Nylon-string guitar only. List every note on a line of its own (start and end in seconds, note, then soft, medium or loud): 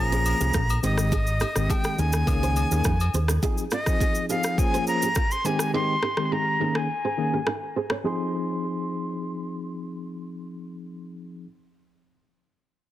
0.12 0.23 G#4 medium
0.12 0.22 C5 medium
0.41 0.52 G4 medium
0.41 0.51 A#4 medium
0.55 0.66 F4 medium
0.55 0.66 A#4 medium
0.84 0.95 G#4 medium
0.84 0.95 C5 medium
1.13 1.24 D#4 medium
1.13 1.23 G#4 loud
1.42 1.53 D#4 medium
1.42 1.52 G4 medium
1.70 1.82 D#4 medium
1.70 1.81 G#4 medium
1.99 2.11 D#4 medium
1.99 2.10 A#4 medium
2.43 2.54 G#4 medium
2.43 2.53 C5 medium
2.72 2.82 G4 medium
2.72 2.82 A#4 medium
2.86 2.97 D#4 medium
2.86 2.97 A#4 medium
3.15 3.26 G#4 medium
3.15 3.25 C5 medium
3.30 3.40 A#4 medium
3.30 3.40 C#5 medium
3.43 3.55 F4 medium
3.43 3.54 G#4 loud
3.72 3.84 C#4 medium
3.72 3.83 F4 medium
4.01 4.12 F4 medium
4.01 4.12 G#4 medium
4.30 4.41 G4 medium
4.30 4.41 A#4 medium
4.74 4.84 G#4 medium
4.74 4.84 C5 medium
5.03 5.13 G4 medium
5.03 5.13 A#4 medium
5.17 5.28 F4 medium
5.17 5.27 A#4 medium
5.45 5.57 G#4 medium
5.45 5.56 C5 medium
5.74 5.86 D#4 medium
5.74 5.85 G#4 loud
6.03 6.14 D#4 medium
6.03 6.14 G4 medium
6.32 6.43 D#4 medium
6.32 6.43 G#4 medium
6.61 6.72 D#4 medium
6.61 6.72 A#4 medium
7.05 7.15 G#4 medium
7.05 7.15 C5 medium
7.34 7.44 G4 medium
7.34 7.43 A#4 medium
7.47 7.59 D#4 medium
7.47 7.58 A#4 medium
7.76 7.88 G#4 medium
7.76 7.87 C5 medium
7.91 8.02 A#4 medium
7.91 8.01 C#5 medium
8.05 8.22 G#4 medium